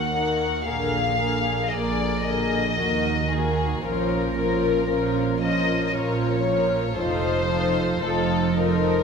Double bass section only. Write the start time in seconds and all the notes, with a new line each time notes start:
Already playing: D#2
0.68 A#1
1.73 A#1
2.78 D#2
3.83 A#1
4.89 A#1
5.94 A#1
6.99 F1
8.02 F1